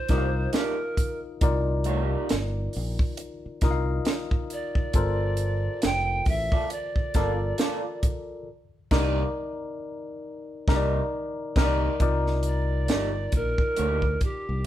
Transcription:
0.00 0.50 C5 medium
0.09 0.46 C2 medium
0.09 0.26 A#3 medium
0.09 0.26 D#4 medium
0.09 1.35 D#4 medium
0.09 1.35 F4 medium
0.09 0.26 G4 medium
0.09 1.36 A#4 medium
0.09 0.26 D5 medium
0.09 0.18 D#5 medium
0.09 kick medium
0.09 snare soft
0.09 closed hi-hat medium
0.18 1.39 F5 medium
0.53 0.74 A#3 medium
0.53 0.74 D#4 medium
0.53 0.75 G4 medium
0.53 1.20 A#4 medium
0.53 0.75 D5 medium
0.53 snare loud
0.53 closed hi-hat medium
0.97 kick medium
0.97 closed hi-hat medium
1.41 2.15 C2 loud
1.41 3.09 D#4 medium
1.41 3.10 F4 medium
1.41 3.10 A#4 medium
1.41 3.10 D5 medium
1.41 kick loud
1.41 closed hi-hat medium
1.84 2.02 A3 medium
1.84 2.03 D4 medium
1.84 2.04 F#4 medium
1.84 2.04 C#5 medium
1.84 closed hi-hat medium
2.02 2.27 A#3 medium
2.02 2.27 D#4 medium
2.02 2.27 G4 medium
2.02 2.28 D5 medium
2.29 2.67 G1 medium
2.29 snare loud
2.29 closed hi-hat medium
2.73 2.96 A#1 medium
2.73 open hi-hat medium
2.99 kick loud
3.17 closed hi-hat medium
3.46 muted fingered electric bass stroke soft
3.61 3.99 C2 medium
3.61 4.88 D#4 medium
3.61 4.88 F4 medium
3.61 4.89 A#4 medium
3.61 3.71 D#5 medium
3.61 kick medium
3.61 snare soft
3.61 closed hi-hat medium
3.71 4.92 F5 medium
4.05 snare loud
4.05 closed hi-hat medium
4.31 kick medium
4.50 5.86 D5 loud
4.50 closed hi-hat medium
4.75 kick medium
4.93 5.67 G1 loud
4.93 6.62 F4 medium
4.93 6.63 A4 medium
4.93 6.63 A#4 medium
4.93 6.63 C5 medium
4.93 kick loud
4.93 closed hi-hat medium
5.37 closed hi-hat medium
5.82 6.20 F1 medium
5.82 6.28 G5 loud
5.82 snare loud
5.82 closed hi-hat medium
6.26 6.48 A1 medium
6.26 6.73 E5 medium
6.26 kick medium
6.26 open hi-hat soft
6.52 6.65 A#3 soft
6.52 6.65 F4 medium
6.52 6.65 A4 medium
6.52 6.65 D5 medium
6.52 kick medium
6.70 8.04 D5 medium
6.70 closed hi-hat medium
6.96 muted fingered electric bass stroke soft
6.96 kick medium
7.14 7.52 G1 medium
7.14 7.31 A#3 medium
7.14 8.41 F4 medium
7.14 7.32 F4 medium
7.14 8.41 A4 medium
7.14 7.32 A4 medium
7.14 8.41 A#4 medium
7.14 8.42 D5 medium
7.14 7.33 D5 medium
7.14 kick medium
7.14 snare soft
7.14 closed hi-hat medium
7.58 7.80 A#3 medium
7.58 7.81 F4 medium
7.58 7.81 A4 medium
7.58 7.81 D5 medium
7.58 snare loud
7.58 closed hi-hat medium
8.03 kick medium
8.03 closed hi-hat medium
8.91 9.23 C2 loud
8.91 9.23 A#3 medium
8.91 9.23 D#4 loud
8.91 9.23 D#4 medium
8.91 9.23 G4 medium
8.91 9.23 A#4 medium
8.91 9.23 D5 medium
8.91 kick loud
8.91 snare loud
8.91 crash medium
10.68 11.00 C2 loud
10.68 10.99 A#3 medium
10.68 10.99 D#4 medium
10.68 11.00 D#4 medium
10.68 11.00 G4 medium
10.68 11.00 A#4 medium
10.68 11.00 D5 medium
10.68 kick loud
10.68 snare medium
10.76 11.04 D5 medium
11.56 11.88 C2 medium
11.56 11.88 A#3 medium
11.56 11.87 D#4 medium
11.56 11.88 D#4 medium
11.56 11.88 G4 medium
11.56 11.88 A#4 medium
11.56 11.89 D5 medium
11.56 kick loud
11.56 snare loud
11.56 crash medium
11.64 11.92 D5 medium
12.00 12.91 C2 medium
12.00 13.68 D#4 medium
12.00 13.69 F4 medium
12.00 13.69 A#4 medium
12.00 13.69 D5 medium
12.00 kick medium
12.00 closed hi-hat medium
12.26 snare soft
12.43 closed hi-hat medium
12.47 13.37 D5 loud
12.88 13.26 G1 medium
12.88 13.10 A#3 medium
12.88 13.10 D#4 medium
12.88 13.10 G4 medium
12.88 13.11 D5 medium
12.88 snare loud
12.88 closed hi-hat medium
13.32 13.54 A#1 medium
13.32 14.22 A#4 loud
13.32 kick medium
13.32 closed hi-hat medium
13.58 kick medium
13.77 14.15 D2 medium
13.77 14.00 A#3 medium
13.77 14.00 D#4 medium
13.77 14.01 G4 medium
13.77 14.01 D5 medium
13.77 closed hi-hat medium
14.02 kick medium
14.21 14.66 G4 medium
14.21 kick medium
14.21 closed hi-hat soft
14.49 14.63 C2 medium

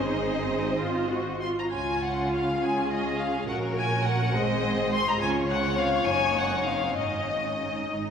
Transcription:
0.00 1.52 G#1 medium
0.00 1.42 C4 medium
0.00 0.72 D#4 medium
0.00 0.72 G#4 medium
0.00 1.23 C5 medium
0.00 1.38 D#5 medium
0.78 1.08 F4 medium
1.09 1.42 F#4 soft
1.41 1.73 F4 medium
1.41 1.48 C6 medium
1.59 1.65 A#5 medium
1.72 3.44 C#2 soft
1.72 3.45 C#3 soft
1.72 2.58 C#4 soft
1.72 2.57 F4 soft
1.72 2.58 F4 soft
1.72 2.03 G#5 medium
2.04 2.33 F#5 soft
2.34 2.62 F5 medium
2.60 3.47 C#4 soft
2.60 3.47 F4 soft
2.60 3.46 G#4 soft
2.60 2.91 G#5 medium
2.91 3.19 D#5 medium
3.19 3.49 F5 soft
3.47 4.33 A#1 soft
3.47 4.33 A#2 soft
3.47 4.33 C#4 soft
3.47 4.33 F#4 soft
3.47 4.33 A#4 medium
3.47 3.55 F#5 medium
3.77 4.05 G#5 medium
4.04 4.34 F#5 medium
4.35 5.21 G#1 soft
4.35 5.21 G#2 soft
4.35 5.21 C4 medium
4.35 5.21 G#4 medium
4.35 5.21 C5 medium
4.35 4.92 D#5 medium
4.93 5.06 C6 medium
5.08 5.21 A#5 medium
5.21 6.04 C#2 medium
5.21 6.04 C#3 soft
5.21 5.61 C#4 soft
5.21 6.04 F4 soft
5.21 6.99 C#5 medium
5.21 5.29 G#5 medium
5.50 5.78 F#5 medium
5.64 6.08 C4 soft
5.79 6.08 F5 medium
6.07 6.97 F#1 soft
6.07 6.97 F#2 soft
6.07 6.51 A#3 soft
6.07 6.97 D#4 soft
6.07 6.38 G#5 medium
6.37 6.68 F#5 medium
6.52 6.98 C4 soft
6.66 6.98 F5 medium
6.98 7.89 G#1 soft
6.98 7.89 G#2 soft
6.98 7.91 C#4 soft
6.98 7.89 D#4 soft
6.98 7.88 D#5 medium
6.98 8.10 D#5 soft
7.90 8.10 G#1 soft
7.90 8.10 G#2 soft
7.90 8.10 D#4 soft

